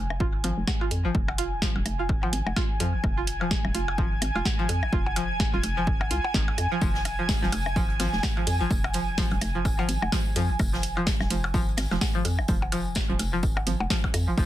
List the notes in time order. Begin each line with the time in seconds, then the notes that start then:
Already playing: F1 G#5
0.10 percussion blips, claves
0.20 F4, kick
0.44 G#1 F3, closed hi-hat, percussion blips
0.58 F1
0.67 kick, snare, percussion blips, claves
0.81 F4, percussion blips
0.91 F2, closed hi-hat
1.05 G#1 F3
1.15 F1, kick
1.28 percussion blips, claves
1.38 F4, closed hi-hat
1.62 F3, kick, snare
1.76 D#1, percussion blips
1.86 F1, closed hi-hat, percussion blips, claves
1.99 F4
2.09 kick, percussion blips
2.23 F3, percussion blips
2.33 G#1, closed hi-hat
2.47 F1, percussion blips, claves
2.56 F4, kick, snare, percussion blips
2.80 F2 F3, closed hi-hat
2.94 G#1
3.04 F1, kick, percussion blips, claves
3.17 F4
3.27 closed hi-hat
3.41 F3, percussion blips
3.51 kick, snare
3.65 D#1, percussion blips, claves
3.75 F1 F4, closed hi-hat
3.88 percussion blips
3.98 F3, kick
4.22 G#1, closed hi-hat, percussion blips, claves
4.35 F1 F4, percussion blips
4.45 kick, snare, percussion blips
4.59 F3
4.69 F2, closed hi-hat, percussion blips
4.83 G#1, percussion blips, claves
4.93 F1 F4, kick
5.06 percussion blips
5.16 F3, closed hi-hat, percussion blips
5.40 kick, snare, percussion blips, claves
5.54 D#1 F4
5.63 F1, closed hi-hat, percussion blips
5.77 F3
5.87 kick
6.01 percussion blips, claves
6.11 C2 F4, closed hi-hat
6.24 percussion blips
6.34 G#1 D#3, kick, snare
6.48 percussion blips
6.58 F2, closed hi-hat, percussion blips, claves
6.72 F3
6.82 F1 F3, kick, tambourine
6.95 snare
7.05 closed hi-hat, tambourine, percussion blips, claves
7.19 F3
7.29 kick, snare, tambourine
7.42 D#1 F3, snare
7.52 F1, closed hi-hat, tambourine, percussion blips
7.66 percussion blips, claves
7.76 F3, kick, tambourine
7.90 closed hi-hat
8.00 G#1 F3, snare, closed hi-hat, tambourine, percussion blips
8.13 F1, snare
8.23 kick, snare, tambourine, percussion blips, claves
8.37 F3, percussion blips
8.47 F2, closed hi-hat, tambourine
8.61 G#1 F3
8.71 F1, kick, tambourine
8.84 percussion blips, claves
8.94 F3, closed hi-hat, tambourine
9.18 F3, kick, snare, tambourine
9.31 D#1, closed hi-hat, percussion blips
9.41 F1, snare, closed hi-hat, tambourine, percussion blips, claves
9.55 F3
9.65 kick, tambourine, percussion blips
9.79 F3, percussion blips
9.89 G#1, closed hi-hat, tambourine
10.02 F1, percussion blips, claves
10.12 F3, kick, snare, tambourine, percussion blips
10.36 F2 F3, closed hi-hat, tambourine
10.50 G#1
10.59 F1, kick, tambourine, percussion blips, claves
10.73 F3, snare
10.83 closed hi-hat, tambourine
10.97 F3, percussion blips
11.06 kick, snare, tambourine
11.20 D#1, snare, percussion blips, claves
11.30 F1 F3, closed hi-hat, tambourine
11.44 percussion blips
11.54 F3, kick, tambourine
11.68 closed hi-hat
11.77 G#1, snare, closed hi-hat, tambourine, percussion blips, claves
11.91 F1 F3, snare, percussion blips
12.01 kick, snare, tambourine, percussion blips
12.15 F3
12.25 F2, closed hi-hat, tambourine, percussion blips
12.39 G#1, percussion blips, claves
12.48 F1 F3, kick, tambourine
12.62 percussion blips
12.72 F3, closed hi-hat, tambourine, percussion blips
12.95 kick, snare, tambourine, percussion blips, claves
13.09 D#1 F3, closed hi-hat
13.19 F1, snare, closed hi-hat, tambourine, percussion blips
13.33 F3
13.43 kick, tambourine
13.57 percussion blips, claves
13.67 G#1 F3, closed hi-hat, tambourine
13.80 F1, percussion blips
13.90 F3, kick, snare, tambourine
14.04 kick, percussion blips
14.14 F2, closed hi-hat, tambourine, percussion blips, claves
14.28 G#1 F3
14.38 F1 F3, kick, tambourine